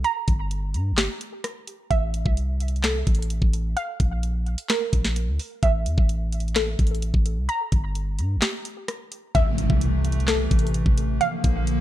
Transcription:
0.04 1.91 A#5 loud
0.04 closed hi-hat medium
0.28 0.76 G1 loud
0.28 kick medium
0.28 closed hi-hat medium
0.51 closed hi-hat medium
0.74 0.93 G2 loud
0.74 closed hi-hat medium
0.92 1.08 G1 loud
0.97 1.91 G4 medium
0.97 snare loud
0.97 clap loud
0.97 closed hi-hat medium
1.21 closed hi-hat medium
1.44 cross-stick loud
1.44 closed hi-hat medium
1.67 closed hi-hat medium
1.91 2.24 A1 loud
1.91 3.77 E5 loud
1.91 kick loud
1.91 closed hi-hat medium
2.14 closed hi-hat medium
2.26 3.04 C2 loud
2.26 kick loud
2.37 closed hi-hat medium
2.60 closed hi-hat medium
2.68 closed hi-hat soft
2.76 closed hi-hat soft
2.83 3.77 A4 medium
2.83 snare loud
2.83 clap medium
2.83 closed hi-hat medium
3.07 3.40 A1 loud
3.07 kick medium
3.07 closed hi-hat medium
3.15 closed hi-hat medium
3.22 closed hi-hat medium
3.30 closed hi-hat medium
3.42 3.75 A1 loud
3.42 kick medium
3.53 closed hi-hat medium
3.77 5.63 F5 loud
3.77 closed hi-hat medium
4.00 4.56 A#1 loud
4.00 kick medium
4.00 closed hi-hat medium
4.23 closed hi-hat medium
4.46 closed hi-hat soft
4.58 closed hi-hat medium
4.69 5.63 A#4 medium
4.69 snare loud
4.69 clap medium
4.69 closed hi-hat medium
4.93 5.29 A#1 loud
4.93 kick medium
4.93 closed hi-hat medium
5.05 snare medium
5.16 closed hi-hat medium
5.28 5.39 D2 loud
5.39 open hi-hat medium
5.63 5.87 A1 loud
5.63 7.49 E5 loud
5.63 kick loud
5.63 closed hi-hat medium
5.86 5.97 E2 loud
5.86 closed hi-hat medium
5.98 6.76 A1 loud
5.98 kick loud
6.09 closed hi-hat medium
6.32 closed hi-hat medium
6.40 closed hi-hat soft
6.48 closed hi-hat soft
6.55 7.49 A4 medium
6.55 snare loud
6.55 clap loud
6.55 closed hi-hat medium
6.79 7.12 A1 loud
6.79 kick medium
6.79 closed hi-hat medium
6.87 closed hi-hat medium
6.95 closed hi-hat medium
7.02 closed hi-hat medium
7.14 7.39 A1 loud
7.14 kick medium
7.26 closed hi-hat medium
7.37 7.48 C2 loud
7.49 9.35 A#5 loud
7.49 closed hi-hat medium
7.72 8.20 G1 loud
7.72 kick medium
7.72 closed hi-hat medium
7.95 closed hi-hat medium
8.19 8.38 G2 loud
8.19 closed hi-hat medium
8.36 8.42 G1 loud
8.42 9.35 G4 medium
8.42 snare loud
8.42 clap medium
8.42 closed hi-hat medium
8.65 closed hi-hat medium
8.88 cross-stick loud
8.88 closed hi-hat medium
9.12 closed hi-hat medium
9.35 9.68 A1 loud
9.35 11.19 C3 medium
9.35 11.19 E3 medium
9.35 11.19 A3 medium
9.35 11.21 E5 loud
9.35 kick loud
9.35 closed hi-hat medium
9.35 impact medium
9.58 closed hi-hat medium
9.70 10.48 C2 loud
9.70 kick loud
9.81 closed hi-hat medium
10.05 closed hi-hat medium
10.12 closed hi-hat medium
10.20 closed hi-hat soft
10.28 11.21 A4 medium
10.28 snare loud
10.28 clap loud
10.28 closed hi-hat medium
10.51 10.85 A1 loud
10.51 kick medium
10.51 closed hi-hat medium
10.59 closed hi-hat medium
10.67 closed hi-hat medium
10.74 closed hi-hat medium
10.86 11.19 A1 loud
10.86 kick medium
10.98 closed hi-hat medium
11.21 11.81 D3 medium
11.21 11.81 F3 medium
11.21 11.81 A#3 medium
11.21 11.81 F5 loud
11.21 closed hi-hat medium
11.44 11.81 A#1 loud
11.44 kick loud
11.44 closed hi-hat medium
11.67 closed hi-hat medium

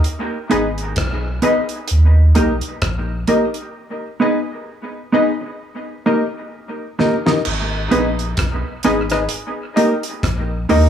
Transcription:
0.04 closed hi-hat medium
0.50 0.94 G#1 medium
0.50 0.67 B3 medium
0.50 0.67 D#4 medium
0.50 0.68 D#4 loud
0.50 0.67 G#4 medium
0.50 0.68 G#4 medium
0.50 0.67 B4 loud
0.50 0.69 B4 medium
0.50 0.69 D#5 loud
0.50 closed hi-hat medium
0.78 closed hi-hat soft
0.96 1.40 B1 medium
0.96 kick loud
0.96 cross-stick loud
0.96 closed hi-hat medium
1.42 1.59 B3 medium
1.42 1.59 D#4 medium
1.42 1.61 D#4 loud
1.42 1.60 G#4 medium
1.42 1.61 G#4 medium
1.42 1.60 B4 medium
1.42 1.61 B4 medium
1.42 1.61 D#5 loud
1.42 closed hi-hat medium
1.69 closed hi-hat soft
1.88 2.33 D#2 loud
1.88 closed hi-hat medium
2.35 2.61 B1 medium
2.35 2.52 A#3 medium
2.35 2.53 D#4 medium
2.35 2.52 D#4 medium
2.35 2.53 G4 medium
2.35 2.53 A#4 medium
2.35 2.53 D#5 medium
2.35 closed hi-hat medium
2.61 closed hi-hat medium
2.82 3.25 A#1 medium
2.82 kick loud
2.82 cross-stick loud
2.82 closed hi-hat medium
3.27 3.45 A#3 medium
3.27 3.46 D#4 medium
3.27 3.45 D#4 medium
3.27 3.46 G4 medium
3.27 3.45 G4 medium
3.27 3.45 A#4 medium
3.27 3.46 A#4 medium
3.27 3.46 D#5 loud
3.27 closed hi-hat medium
3.54 closed hi-hat soft
4.20 4.37 B3 medium
4.20 4.37 D#4 medium
4.20 4.38 D#4 medium
4.20 4.37 G#4 medium
4.20 4.39 G#4 medium
4.20 4.38 B4 medium
4.20 4.39 B4 medium
4.20 4.39 D#5 loud
5.12 5.30 B3 medium
5.12 5.31 D#4 loud
5.12 5.30 D#4 medium
5.12 5.31 G#4 medium
5.12 5.30 G#4 medium
5.12 5.31 B4 medium
5.12 5.30 B4 medium
5.12 5.32 D#5 loud
5.41 muted clean electric guitar stroke soft
6.06 6.23 A#3 medium
6.06 6.24 D#4 medium
6.06 6.23 D#4 medium
6.06 6.24 G4 medium
6.06 6.23 G4 medium
6.06 6.24 A#4 medium
6.06 6.23 A#4 medium
6.06 6.24 D#5 medium
6.99 7.15 A#3 medium
6.99 7.16 D#4 medium
6.99 7.15 D#4 medium
6.99 7.17 G4 medium
6.99 7.16 G4 medium
6.99 7.17 A#4 medium
6.99 7.16 A#4 medium
6.99 7.17 D#5 medium
6.99 snare medium
7.26 7.38 D#4 medium
7.26 7.39 G4 medium
7.26 7.39 A#4 medium
7.26 7.39 D#5 medium
7.26 snare medium
7.45 7.88 G#1 loud
7.45 crash medium
7.91 8.35 A#1 medium
7.91 8.08 B3 medium
7.91 8.09 D#4 loud
7.91 8.08 D#4 medium
7.91 8.09 G#4 medium
7.91 8.08 G#4 loud
7.91 8.09 B4 medium
7.91 8.08 B4 loud
7.91 8.10 D#5 medium
7.91 closed hi-hat medium
8.19 closed hi-hat soft
8.37 8.63 B1 medium
8.37 kick loud
8.37 cross-stick loud
8.37 closed hi-hat medium
8.83 9.27 G#1 medium
8.83 9.01 B3 medium
8.83 9.02 D#4 loud
8.83 9.01 D#4 medium
8.83 9.02 G#4 medium
8.83 9.01 G#4 medium
8.83 9.02 B4 medium
8.83 9.01 B4 medium
8.83 9.02 D#5 loud
8.83 cross-stick medium
8.83 closed hi-hat medium
9.10 9.24 D#4 medium
9.10 9.24 G#4 medium
9.10 9.24 B4 medium
9.10 9.24 D#5 medium
9.10 cross-stick medium
9.10 closed hi-hat medium
9.29 closed hi-hat medium
9.76 9.93 A#3 medium
9.76 9.94 D#4 loud
9.76 9.93 D#4 medium
9.76 9.94 G4 medium
9.76 9.94 G4 loud
9.76 9.94 A#4 medium
9.76 9.94 D#5 loud
9.76 closed hi-hat medium
10.03 closed hi-hat medium
10.23 10.66 A#1 medium
10.23 kick loud
10.23 cross-stick loud
10.23 closed hi-hat medium
10.69 10.89 D#2 medium
10.69 10.86 A#3 medium
10.69 10.87 D#4 medium
10.69 10.86 D#4 medium
10.69 10.87 G4 medium
10.69 10.86 G4 medium
10.69 10.86 A#4 loud
10.69 10.87 A#4 medium
10.69 10.87 D#5 loud
10.69 open hi-hat medium

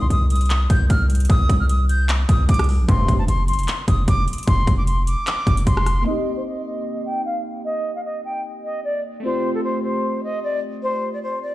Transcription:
0.01 0.09 C6 medium
0.10 0.68 C2 loud
0.10 0.26 D#6 medium
0.10 closed hi-hat medium
0.30 0.68 D#6 medium
0.30 closed hi-hat medium
0.36 closed hi-hat medium
0.41 closed hi-hat medium
0.46 closed hi-hat soft
0.50 clap loud
0.50 closed hi-hat medium
0.70 0.89 C2 loud
0.70 0.86 G6 medium
0.70 kick loud
0.70 closed hi-hat medium
0.90 1.28 C2 loud
0.90 1.06 F6 medium
0.90 kick medium
0.90 closed hi-hat medium
1.10 closed hi-hat medium
1.15 closed hi-hat medium
1.20 closed hi-hat medium
1.25 closed hi-hat medium
1.30 1.49 C2 loud
1.30 1.58 D#6 loud
1.30 kick loud
1.49 2.26 C2 loud
1.49 kick loud
1.49 closed hi-hat medium
1.60 1.67 F6 medium
1.69 1.85 D#6 medium
1.69 closed hi-hat medium
1.89 2.05 G6 medium
1.89 closed hi-hat medium
2.09 clap loud
2.09 closed hi-hat medium
2.29 2.48 C2 loud
2.29 2.45 D#6 medium
2.29 kick loud
2.29 closed hi-hat medium
2.49 2.81 C2 loud
2.49 2.65 D6 medium
2.49 kick medium
2.49 closed hi-hat medium
2.54 closed hi-hat medium
2.59 cross-stick loud
2.59 closed hi-hat medium
2.64 closed hi-hat medium
2.69 open hi-hat medium
2.79 2.88 A#1 loud
2.88 3.08 F1 loud
2.88 3.17 A1 loud
2.88 3.17 G2 loud
2.88 3.17 C3 loud
2.88 3.17 C6 medium
2.88 kick loud
2.88 closed hi-hat medium
3.08 3.27 F1 loud
3.08 kick loud
3.08 closed hi-hat medium
3.19 3.26 A5 medium
3.28 3.50 F1 loud
3.28 3.44 C6 medium
3.28 closed hi-hat medium
3.48 3.60 G1 loud
3.48 3.86 C6 medium
3.48 closed hi-hat medium
3.53 closed hi-hat medium
3.59 3.68 F1 loud
3.59 closed hi-hat medium
3.63 closed hi-hat soft
3.68 clap loud
3.68 closed hi-hat medium
3.88 4.07 F1 loud
3.88 4.04 D#6 medium
3.88 kick medium
3.88 closed hi-hat medium
4.08 4.27 F1 loud
4.08 4.24 D6 medium
4.08 kick medium
4.08 closed hi-hat medium
4.28 closed hi-hat medium
4.33 closed hi-hat medium
4.38 closed hi-hat medium
4.43 closed hi-hat medium
4.47 4.67 F1 loud
4.47 4.76 C6 loud
4.47 kick loud
4.47 closed hi-hat medium
4.67 5.16 F1 loud
4.67 kick loud
4.67 closed hi-hat medium
4.78 4.85 D6 medium
4.87 5.03 C6 medium
4.87 closed hi-hat medium
5.07 5.63 D6 medium
5.07 closed hi-hat medium
5.27 clap loud
5.27 closed hi-hat medium
5.47 5.66 F1 loud
5.47 kick loud
5.47 closed hi-hat medium
5.57 closed hi-hat medium
5.67 6.05 F1 loud
5.67 6.04 C6 medium
5.67 kick medium
5.67 closed hi-hat medium
5.77 cross-stick loud
5.86 cross-stick medium
5.86 closed hi-hat medium
6.02 9.18 A#3 medium
6.02 9.20 C4 medium
6.02 6.35 D#5 loud
6.08 9.21 D#4 medium
6.08 9.22 G4 medium
6.37 6.44 C5 medium
6.46 6.62 D#5 medium
6.66 7.03 D#5 medium
7.06 7.22 G5 medium
7.26 7.41 F5 medium
7.65 7.94 D#5 loud
7.96 8.03 F5 medium
8.05 8.21 D#5 medium
8.25 8.41 G5 medium
8.64 8.80 D#5 medium
8.84 9.00 D5 medium
9.20 11.55 A3 medium
9.20 11.55 C4 medium
9.24 11.55 F4 medium
9.24 11.55 G4 medium
9.24 9.53 C5 medium
9.54 9.62 A4 medium
9.64 9.80 C5 medium
9.84 10.21 C5 medium
10.23 10.39 D#5 medium
10.44 10.59 D5 medium
10.83 11.12 C5 loud
11.13 11.21 D5 medium
11.23 11.39 C5 medium
11.43 11.55 D5 medium

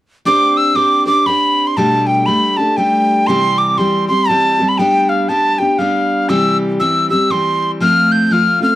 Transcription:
0.25 0.74 C4 medium
0.25 0.75 D4 medium
0.25 0.76 G4 medium
0.25 0.76 C5 medium
0.25 0.59 D6 loud
0.57 0.77 E6 medium
0.75 1.06 C4 medium
0.75 1.07 D4 medium
0.75 1.06 G4 medium
0.75 1.04 C5 medium
0.75 1.06 D6 medium
1.05 1.26 D4 soft
1.05 1.27 G4 soft
1.05 1.26 C5 soft
1.05 1.28 D6 medium
1.26 1.77 C4 soft
1.26 1.77 D4 medium
1.26 1.78 G4 medium
1.26 1.78 C5 medium
1.26 1.69 B5 medium
1.67 1.78 C6 medium
1.77 2.28 B2 medium
1.77 2.26 G3 medium
1.77 2.27 A3 medium
1.77 2.27 D4 medium
1.77 2.29 G4 medium
1.77 2.08 A5 loud
2.07 2.27 G5 medium
2.26 2.58 G3 medium
2.26 2.59 A3 medium
2.26 2.58 D4 medium
2.26 2.57 G4 medium
2.26 2.58 B5 medium
2.57 2.77 A3 soft
2.57 2.78 D4 soft
2.57 2.78 G4 soft
2.57 2.78 A5 medium
2.77 3.28 G3 medium
2.77 3.29 A3 medium
2.77 3.29 D4 medium
2.77 3.29 G4 medium
2.77 3.28 G5 medium
3.27 3.79 C3 medium
3.27 3.77 E3 medium
3.27 3.78 G3 medium
3.27 3.78 C4 medium
3.27 3.80 G4 medium
3.27 3.60 C6 loud
3.58 3.79 D6 medium
3.78 4.09 E3 medium
3.78 4.10 G3 medium
3.78 4.09 C4 medium
3.78 4.07 G4 medium
3.78 4.08 C6 medium
4.08 4.28 G3 soft
4.08 4.29 C4 soft
4.08 4.29 G4 soft
4.08 4.30 C6 medium
4.28 4.60 E3 medium
4.28 4.60 G3 medium
4.28 4.59 C4 medium
4.28 4.58 G4 medium
4.28 4.70 A5 medium
4.59 4.78 G3 soft
4.59 4.80 C4 soft
4.59 4.79 G4 soft
4.69 4.79 B5 medium
4.78 5.28 G3 medium
4.78 5.28 B3 medium
4.78 5.29 D4 medium
4.78 5.31 G4 medium
4.78 5.11 G5 medium
5.09 5.30 F5 medium
5.29 5.60 G3 medium
5.29 5.60 B3 medium
5.29 5.60 D4 medium
5.29 5.58 G4 medium
5.29 5.60 A5 medium
5.58 5.79 B3 soft
5.58 5.79 D4 soft
5.58 5.80 G4 soft
5.58 5.80 G5 medium
5.78 6.29 G3 medium
5.78 6.29 B3 medium
5.78 6.30 D4 medium
5.78 6.29 G4 medium
5.78 6.31 F5 medium
6.29 6.80 C3 medium
6.29 6.78 E3 medium
6.29 6.80 G3 medium
6.29 6.81 C4 medium
6.29 6.81 G4 medium
6.29 6.57 E6 medium
6.80 7.11 E3 medium
6.80 7.11 G3 medium
6.80 7.11 C4 medium
6.80 7.09 G4 medium
6.80 7.09 E6 medium
7.10 7.30 G3 soft
7.10 7.31 C4 soft
7.10 7.31 G4 soft
7.10 7.32 E6 medium
7.30 7.80 E3 medium
7.30 7.81 G3 medium
7.30 7.80 C4 medium
7.30 7.82 G4 medium
7.30 7.71 C6 medium
7.80 8.29 F3 medium
7.80 8.31 A3 medium
7.80 8.30 C4 medium
7.80 8.32 F4 medium
7.80 8.13 F6 loud
8.12 8.27 G6 medium
8.27 8.62 F3 medium
8.27 8.34 G6 medium
8.31 8.61 A3 medium
8.31 8.61 C4 medium
8.31 8.59 F4 medium
8.31 8.62 F6 medium
8.60 8.75 A3 soft
8.60 8.75 C4 soft
8.60 8.75 F4 soft
8.60 8.75 F6 medium

